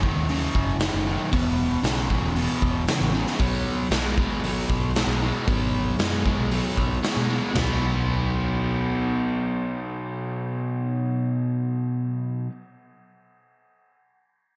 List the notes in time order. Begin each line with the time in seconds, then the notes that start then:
Already playing: F#1
0.03 F#2 D#3, kick
0.16 D#2
0.28 F#2 C#3, open hi-hat
0.55 F#1, kick
0.80 F#2 D#3, snare, open hi-hat
0.94 F#1
1.06 F#2 D#3
1.32 E1 E2 B2, kick, open hi-hat
1.83 B1 E2 C#3, snare, open hi-hat
2.09 E2 C#3, kick
2.23 E1
2.36 E2 B2, open hi-hat
2.62 E1, kick
2.88 E2 C#3, snare, open hi-hat
3.01 A1
3.14 E2 C#3
3.27 snare
3.39 B1 B2 F#3, kick, open hi-hat
3.91 B1 B2 G#3, snare, open hi-hat
4.18 B2 G#3, kick
4.30 G#1
4.44 B2 F#3, open hi-hat
4.70 B1, kick
4.95 B2 G#3, snare, open hi-hat
5.07 B1
5.22 B2 G#3
5.47 G#1 B2 F#3, kick, open hi-hat
5.99 F#2 B2 G#3, snare, open hi-hat
6.25 B2 G#3, kick
6.39 B1
6.51 B2 F#3, open hi-hat
6.77 B1, kick
7.03 B2 G#3, snare, open hi-hat
7.16 B2
7.29 B2 G#3
7.53 B1 B2 F#3, snare, floor tom, ride bell
7.57 B3